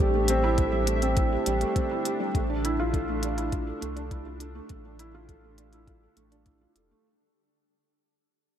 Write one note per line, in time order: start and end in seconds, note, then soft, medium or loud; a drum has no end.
0.00 1.37 A1 loud
0.00 0.72 G3 medium
0.00 0.15 A3 medium
0.00 0.30 C4 medium
0.00 7.05 D4 medium
0.00 0.44 E4 medium
0.00 0.58 G4 medium
0.00 7.05 G4 medium
0.00 7.05 A4 medium
0.00 2.34 E5 medium
0.15 0.28 A3 medium
0.28 0.37 C4 loud
0.28 closed hi-hat medium
0.44 0.57 E4 medium
0.58 0.66 G4 medium
0.58 kick medium
0.58 closed hi-hat soft
0.72 0.86 G3 medium
0.87 1.01 A3 medium
0.87 closed hi-hat medium
1.02 1.10 C4 medium
1.02 closed hi-hat soft
1.17 1.31 E4 medium
1.17 kick loud
1.17 closed hi-hat soft
1.33 1.46 G4 medium
1.46 1.64 A1 medium
1.46 1.55 G3 medium
1.46 closed hi-hat medium
1.61 1.75 A3 medium
1.61 closed hi-hat soft
1.75 1.84 C4 medium
1.75 kick medium
1.75 closed hi-hat soft
1.91 2.05 E4 medium
2.05 2.19 G4 medium
2.05 closed hi-hat medium
2.20 2.28 G3 medium
2.35 3.73 A1 medium
2.35 2.43 A3 medium
2.35 kick loud
2.35 closed hi-hat soft
2.50 2.63 D4 medium
2.65 2.73 E4 medium
2.65 closed hi-hat medium
2.80 2.93 F4 medium
2.94 3.02 A4 medium
2.94 kick loud
2.94 closed hi-hat soft
3.09 3.22 A3 medium
3.23 3.37 D4 medium
3.23 closed hi-hat medium
3.38 3.46 E4 medium
3.38 closed hi-hat soft
3.52 3.66 F4 medium
3.52 kick medium
3.52 closed hi-hat soft
3.67 3.81 A4 medium
3.81 4.61 C2 medium
3.81 3.90 A3 medium
3.81 closed hi-hat medium
3.96 4.10 D4 medium
3.96 closed hi-hat soft
4.11 4.20 E4 medium
4.11 kick medium
4.11 closed hi-hat soft
4.26 4.40 F4 medium
4.40 4.55 A4 medium
4.40 closed hi-hat medium
4.55 4.63 A3 medium
4.69 6.08 A1 medium
4.69 4.79 A3 medium
4.69 kick loud
4.69 closed hi-hat soft
4.85 4.99 D4 medium
4.99 5.08 E4 medium
4.99 closed hi-hat medium
5.15 5.28 F4 medium
5.29 5.37 A4 medium
5.29 kick medium
5.29 closed hi-hat soft
5.44 5.58 A3 medium
5.58 5.72 D4 medium
5.58 closed hi-hat medium
5.73 5.81 E4 medium
5.73 closed hi-hat soft
5.87 6.01 F4 medium
5.87 kick medium
5.87 closed hi-hat soft
6.03 6.17 A4 medium
6.17 6.66 A1 medium
6.17 6.25 A3 medium
6.17 closed hi-hat medium
6.31 6.45 D4 medium
6.31 closed hi-hat soft
6.46 6.55 E4 medium
6.46 kick medium
6.46 closed hi-hat soft
6.61 6.75 F4 medium
6.76 6.94 E1 medium
6.76 6.90 A4 medium
6.76 closed hi-hat medium
6.91 6.99 A3 medium